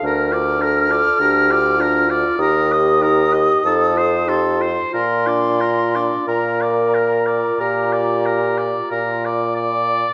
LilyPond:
<<
  \new Staff \with { instrumentName = "Flute" } { \time 4/4 \key bes \major \tempo 4 = 46 f'''2 ees'''4. c'''8 | c'''4 bes''2~ bes''8 r8 | }
  \new Staff \with { instrumentName = "Oboe" } { \time 4/4 \key bes \major bes'16 d''16 bes'16 d''16 bes'16 d''16 bes'16 d''16 bes'16 ees''16 bes'16 ees''16 a'16 c''16 a'16 c''16 | bes'16 d''16 bes'16 d''16 bes'16 d''16 bes'16 d''16 bes'16 d''16 bes'16 d''16 bes'16 d''16 d''8 | }
  \new Staff \with { instrumentName = "French horn" } { \time 4/4 \key bes \major bes'8 a'8 g'8 f'8 g'4 a'8 g'8 | f'2.~ f'8 r8 | }
  \new Staff \with { instrumentName = "Clarinet" } { \time 4/4 \key bes \major d'16 f'16 d'16 f'16 d'16 f'16 d'16 f'16 ees'16 g'16 ees'16 g'16 ees'16 f'16 ees'16 f'16 | f'16 d'16 f'16 d'16 bes'4 g'4 f'4 | }
  \new Staff \with { instrumentName = "Bassoon" } { \clef bass \time 4/4 \key bes \major d,4 d,4 ees,4 f,4 | bes,4 bes,4 bes,4 bes,4 | }
>>